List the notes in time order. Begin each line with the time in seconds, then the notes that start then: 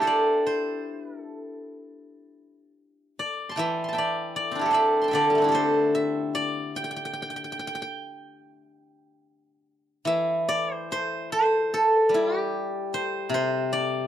Already playing: A3 C4 D4 E4 G4 E5
0.02 A4 C5
0.07 D5
0.46 C5
1.21 A4
3.19 D5
3.49 A5 C6
3.56 E3 E5 G5
3.84 C6
3.88 A5
3.93 E5 G5
3.98 D5
4.36 D5
4.51 C4 D4
4.59 E4 G4
4.66 A4
4.71 C5 D5 E5
5.01 A5 C6
5.08 E5 G5
5.13 D3 D5
5.30 G3
5.35 A3 C4
5.42 D4 E4
5.48 G4 A4
5.55 C5
5.95 E5
6.35 D5
6.76 G5
6.84 G5
6.91 G5
6.96 G5
7.05 G5
7.13 G5
7.22 G5
7.30 G5
7.36 G5
7.44 G5
7.52 G5
7.59 G5
7.67 G5
7.75 G5
7.82 G5
10.05 E3 E5
10.49 D5
10.73 C5
10.92 C5
11.32 C5
11.74 A4
12.09 G3
12.14 E4
12.38 G4
12.94 C5
13.30 C3
13.34 C5
13.73 D5